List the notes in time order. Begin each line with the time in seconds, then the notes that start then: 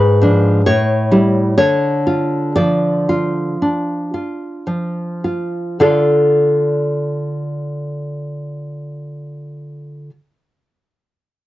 Already playing: G#2 B4
0.22 F3 D4
0.66 A2 C#5
1.11 G3 E4
1.58 D3 C#5
2.07 F4
2.56 F3 D5
3.09 F4
3.62 D4
4.14 F4
4.67 F3
5.24 F4
5.80 D3 F4 A4 D5 F5